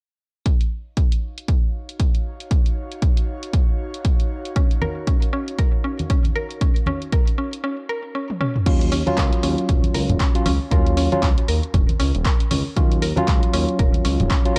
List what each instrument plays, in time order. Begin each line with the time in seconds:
0.46 analog synth pad D#4, kick, closed hi-hat
0.61 closed hi-hat
0.70 analog synth pad C#5
0.80 analog synth pad F5
0.97 analog synth pad F#4, kick, closed hi-hat
1.12 closed hi-hat
1.38 closed hi-hat
1.48 kick, closed hi-hat
1.89 closed hi-hat
2.00 kick, closed hi-hat
2.15 closed hi-hat
2.40 closed hi-hat
2.51 kick, closed hi-hat
2.66 closed hi-hat
2.92 closed hi-hat
3.02 kick, closed hi-hat
3.17 closed hi-hat
3.43 closed hi-hat
3.53 kick, closed hi-hat
3.94 closed hi-hat
4.05 kick, closed hi-hat
4.20 closed hi-hat
4.45 closed hi-hat
4.56 synth arpeggio sound C#4, kick, closed hi-hat
4.71 closed hi-hat
4.82 synth arpeggio sound A#4, high conga
5.07 synth arpeggio sound C#4, kick, closed hi-hat
5.22 closed hi-hat
5.33 synth arpeggio sound C#4
5.48 closed hi-hat
5.59 synth arpeggio sound A#4, kick, closed hi-hat
5.84 synth arpeggio sound C#4
5.99 closed hi-hat, high conga
6.10 synth arpeggio sound C#4, kick, closed hi-hat
6.24 closed hi-hat, high conga
6.36 synth arpeggio sound A#4
6.51 closed hi-hat
6.61 synth arpeggio sound C#4, kick, closed hi-hat
6.76 closed hi-hat
6.86 synth arpeggio sound C#4, high conga
7.02 closed hi-hat
7.12 synth arpeggio sound A#4, kick, closed hi-hat
7.27 closed hi-hat
7.38 synth arpeggio sound C#4
7.53 closed hi-hat
7.64 synth arpeggio sound C#4
7.89 synth arpeggio sound A#4
8.15 synth arpeggio sound C#4
8.30 high tom
8.41 synth arpeggio sound C#4, mid tom
8.56 mid tom
8.66 analog synth bass D#2, tine electric piano F#3 C#4 F4, synth arpeggio sound C#4, kick, closed hi-hat, crash
8.81 closed hi-hat
8.92 synth arpeggio sound C#4, open hi-hat
9.06 tine electric piano F#3 C#4 F4, closed hi-hat, high conga
9.18 analog synth bass C#2, synth arpeggio sound A#4, kick, clap, closed hi-hat
9.33 closed hi-hat
9.43 analog synth bass D#2, synth arpeggio sound C#4, open hi-hat
9.58 closed hi-hat
9.69 analog synth bass D#1, synth arpeggio sound C#4, kick, closed hi-hat
9.84 closed hi-hat, high conga
9.94 analog synth bass C#2, synth arpeggio sound A#4, open hi-hat
10.09 analog synth bass D#1, closed hi-hat, low conga
10.20 synth arpeggio sound C#4, kick, clap, closed hi-hat
10.35 tine electric piano F#3 C#4 F4, closed hi-hat
10.46 analog synth bass C#2, synth arpeggio sound C#4, open hi-hat, high conga
10.71 analog synth bass D#2, tine electric piano F#3 C#4 F4, synth arpeggio sound A#4, kick, closed hi-hat
10.86 closed hi-hat
10.97 synth arpeggio sound C#4, open hi-hat
11.12 tine electric piano F#3 C#4 F4, closed hi-hat, high conga
11.23 analog synth bass C#2, synth arpeggio sound C#4, kick, clap, closed hi-hat
11.38 closed hi-hat
11.48 analog synth bass D#2, synth arpeggio sound A#4, open hi-hat
11.63 closed hi-hat
11.74 analog synth bass D#1, synth arpeggio sound C#4, kick, closed hi-hat, low conga
11.89 closed hi-hat, high conga
12.00 analog synth bass C#2, synth arpeggio sound C#4, open hi-hat
12.15 analog synth bass D#1, closed hi-hat
12.25 synth arpeggio sound A#4, kick, clap, closed hi-hat
12.40 closed hi-hat
12.51 analog synth bass C#2, synth arpeggio sound C#4, open hi-hat, high conga
12.76 analog synth bass D#2, tine electric piano F#3 C#4 F4, synth arpeggio sound C#4, kick, closed hi-hat
12.92 closed hi-hat
13.02 synth arpeggio sound A#4, open hi-hat
13.16 tine electric piano F#3 C#4 F4, closed hi-hat, high conga
13.28 analog synth bass C#2, synth arpeggio sound C#4, kick, clap, closed hi-hat
13.43 closed hi-hat
13.53 analog synth bass D#2, synth arpeggio sound C#4, open hi-hat
13.69 closed hi-hat
13.79 analog synth bass D#1, synth arpeggio sound A#4, kick, closed hi-hat
13.94 closed hi-hat, high conga
14.05 analog synth bass C#2, synth arpeggio sound C#4, open hi-hat
14.20 analog synth bass D#1, closed hi-hat, low conga
14.30 synth arpeggio sound C#4, kick, clap, closed hi-hat
14.45 tine electric piano F#3 C#4 F4, closed hi-hat